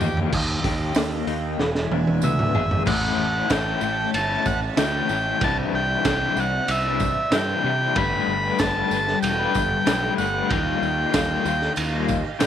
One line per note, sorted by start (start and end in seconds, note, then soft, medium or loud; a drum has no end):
0.00 0.30 D#2 medium
0.00 0.30 D#3 medium
0.00 0.30 F3 medium
0.00 0.18 A#3 medium
0.00 0.16 D#4 medium
0.00 0.20 G4 medium
0.00 0.15 G4 medium
0.00 0.31 D#5 medium
0.00 0.30 G5 medium
0.00 floor tom medium
0.00 tambourine medium
0.16 0.32 A#3 medium
0.16 0.31 D#4 medium
0.16 0.30 G4 medium
0.16 floor tom medium
0.32 0.60 D#2 medium
0.32 1.60 D#3 medium
0.32 1.58 D#5 medium
0.32 1.58 F5 medium
0.32 1.59 G5 medium
0.32 kick loud
0.32 crash loud
0.64 0.91 D#2 medium
0.64 1.60 G4 medium
0.64 kick loud
0.64 snare soft
0.64 open hi-hat medium
0.95 1.23 D#2 medium
0.95 1.60 A#3 medium
0.95 snare loud
0.95 open hi-hat medium
0.95 tambourine loud
1.27 1.54 D#2 loud
1.27 1.59 D#4 medium
1.27 open hi-hat medium
1.58 1.86 E1 medium
1.58 2.85 E3 medium
1.58 2.86 D5 medium
1.58 2.86 E5 medium
1.58 2.86 G#5 medium
1.58 snare medium
1.75 snare medium
1.91 2.18 E1 loud
1.91 2.87 D4 medium
1.91 high tom medium
2.07 high tom medium
2.22 2.50 D2 medium
2.22 2.87 B3 medium
2.22 2.83 E5 medium
2.22 mid tom medium
2.22 tambourine medium
2.39 mid tom medium
2.54 2.82 G#1 medium
2.54 2.87 G#4 medium
2.54 floor tom loud
2.71 floor tom medium
2.85 3.09 A1 medium
2.85 3.48 A2 medium
2.85 3.50 E3 medium
2.85 3.36 A3 medium
2.85 3.34 C#4 loud
2.85 3.33 E4 loud
2.85 5.39 C#5 medium
2.85 7.92 E5 medium
2.85 3.52 F#5 medium
2.85 5.39 A5 medium
2.85 kick loud
2.85 crash loud
2.85 tambourine soft
3.18 3.40 A1 medium
3.33 3.50 A3 medium
3.33 3.51 C#4 medium
3.33 3.52 E4 medium
3.49 3.72 A1 medium
3.49 4.13 A2 loud
3.49 3.80 E3 medium
3.49 3.81 A3 medium
3.49 3.82 C#4 medium
3.49 3.83 E4 loud
3.49 4.11 G5 medium
3.49 kick medium
3.49 snare loud
3.49 ride bell medium
3.49 tambourine loud
3.81 4.04 A1 medium
3.81 3.98 E3 medium
3.81 3.97 A3 medium
3.81 3.98 C#4 medium
3.81 3.97 E4 medium
3.81 tambourine medium
3.98 muted clean electric guitar stroke medium
4.13 4.36 G1 loud
4.13 4.47 A5 medium
4.13 ride bell medium
4.13 tambourine medium
4.29 4.62 A3 medium
4.29 4.61 C#4 medium
4.29 4.61 E4 medium
4.46 4.68 A1 loud
4.46 4.61 F#5 medium
4.46 kick medium
4.46 tambourine medium
4.62 muted clean electric guitar stroke medium
4.77 4.99 D2 medium
4.77 5.39 A2 medium
4.77 5.08 E3 medium
4.77 5.09 A3 loud
4.77 5.11 C#4 loud
4.77 5.11 E4 loud
4.77 5.44 G5 medium
4.77 snare loud
4.77 ride bell medium
4.77 tambourine medium
5.09 5.31 A1 medium
5.09 5.39 E3 medium
5.09 5.27 A3 medium
5.09 5.26 C#4 medium
5.09 5.24 E4 medium
5.09 tambourine medium
5.25 5.41 A3 medium
5.25 5.40 C#4 medium
5.25 5.39 E4 medium
5.41 5.63 C2 medium
5.41 6.03 C3 medium
5.41 6.04 E3 medium
5.41 5.92 G3 medium
5.41 5.91 D4 loud
5.41 5.88 E4 loud
5.41 7.93 C5 medium
5.41 7.93 D5 medium
5.41 5.58 A5 medium
5.41 kick loud
5.41 ride bell medium
5.41 tambourine soft
5.73 5.95 C2 medium
5.73 6.40 G5 loud
5.89 6.06 G3 medium
5.89 6.06 D4 medium
5.89 6.07 E4 medium
6.05 6.27 C2 medium
6.05 6.68 C3 medium
6.05 6.35 E3 loud
6.05 6.37 G3 medium
6.05 6.38 D4 loud
6.05 6.39 E4 loud
6.05 kick medium
6.05 snare loud
6.05 ride bell medium
6.05 tambourine medium
6.36 6.58 C2 medium
6.36 6.52 E3 medium
6.36 6.53 G3 medium
6.36 6.52 D4 medium
6.36 6.52 E4 medium
6.36 6.71 F#5 loud
6.36 tambourine medium
6.53 muted clean electric guitar stroke medium
6.68 7.12 C2 loud
6.68 7.35 E5 loud
6.68 ride bell medium
6.68 tambourine medium
6.84 7.18 G3 medium
6.84 7.17 D4 medium
6.84 7.16 E4 medium
7.00 kick medium
7.00 tambourine medium
7.17 muted clean electric guitar stroke medium
7.31 7.53 G2 medium
7.31 7.94 C3 loud
7.31 7.62 E3 medium
7.31 7.65 G3 loud
7.31 7.65 D4 loud
7.31 7.65 E4 loud
7.31 7.98 G5 loud
7.31 snare loud
7.31 ride bell medium
7.31 tambourine medium
7.64 7.86 C3 medium
7.64 7.94 E3 medium
7.64 7.83 G3 medium
7.64 7.81 D4 medium
7.64 7.79 E4 medium
7.80 7.95 G3 medium
7.80 7.95 D4 medium
7.80 7.94 E4 medium
7.95 8.18 G1 loud
7.95 8.58 G3 medium
7.95 8.58 A3 loud
7.95 8.45 D4 loud
7.95 10.49 G4 medium
7.95 8.45 G4 loud
7.95 10.49 A4 medium
7.95 10.49 B4 medium
7.95 8.42 B4 loud
7.95 8.62 B5 loud
7.95 kick loud
7.95 ride bell medium
7.95 tambourine soft
8.27 8.49 G1 medium
8.43 8.59 D4 medium
8.43 8.61 G4 medium
8.43 8.60 B4 medium
8.59 8.81 G1 medium
8.59 9.85 G3 loud
8.59 8.89 A3 loud
8.59 8.90 D4 medium
8.59 8.92 G4 loud
8.59 8.92 B4 loud
8.59 9.19 A5 loud
8.59 kick medium
8.59 snare loud
8.59 ride bell medium
8.59 tambourine loud
8.91 9.13 G1 medium
8.91 9.07 A3 medium
8.91 9.07 D4 medium
8.91 9.07 G4 medium
8.91 9.06 B4 medium
8.91 tambourine medium
9.07 muted clean electric guitar stroke medium
9.07 snare soft
9.22 9.45 E1 medium
9.22 10.14 G5 loud
9.22 ride bell medium
9.22 tambourine medium
9.39 9.70 D4 medium
9.39 9.70 G4 medium
9.39 9.69 B4 medium
9.55 9.77 G1 loud
9.55 kick medium
9.55 tambourine medium
9.71 muted clean electric guitar stroke medium
9.86 10.09 B1 medium
9.86 10.48 G3 loud
9.86 10.17 A3 loud
9.86 10.18 D4 loud
9.86 10.19 G4 loud
9.86 10.20 B4 loud
9.86 snare loud
9.86 ride bell medium
9.86 tambourine loud
10.18 10.40 G1 medium
10.18 10.48 A3 medium
10.18 10.36 D4 medium
10.18 10.34 G4 medium
10.18 10.32 B4 medium
10.18 10.51 F#5 medium
10.18 tambourine medium
10.34 10.50 D4 medium
10.34 10.49 G4 medium
10.34 10.48 B4 medium
10.49 10.72 D#2 medium
10.49 11.11 D#3 medium
10.49 11.00 G3 loud
10.49 10.98 A#3 loud
10.49 10.97 F4 loud
10.49 12.47 G4 medium
10.49 12.47 D#5 medium
10.49 11.73 G5 medium
10.49 kick loud
10.49 ride bell medium
10.49 tambourine soft
10.54 12.47 F5 medium
10.82 11.04 D#2 medium
10.82 tambourine soft
10.98 11.13 G3 medium
10.98 11.14 A#3 medium
10.98 11.14 F4 medium
11.12 11.36 D#2 medium
11.12 11.43 D#3 medium
11.12 11.44 G3 loud
11.12 11.46 A#3 medium
11.12 11.47 F4 loud
11.12 kick medium
11.12 snare loud
11.12 ride bell medium
11.12 tambourine loud
11.45 11.67 D#2 loud
11.45 11.93 D#3 medium
11.45 11.61 G3 medium
11.45 11.61 A#3 medium
11.45 11.60 F4 medium
11.45 tambourine medium
11.61 muted clean electric guitar stroke medium
11.61 snare soft
11.76 12.21 D#2 medium
11.76 ride bell medium
11.76 tambourine medium
11.92 12.23 G3 medium
11.92 12.23 A#3 medium
11.92 12.22 F4 medium
12.08 kick medium
12.08 tambourine medium
12.24 muted clean electric guitar stroke medium
12.39 12.47 A#2 medium
12.39 12.47 D#3 medium
12.39 12.47 G3 loud
12.39 12.47 A#3 loud
12.39 12.47 F4 loud
12.39 12.47 G5 medium
12.39 snare loud
12.39 ride bell medium
12.39 tambourine medium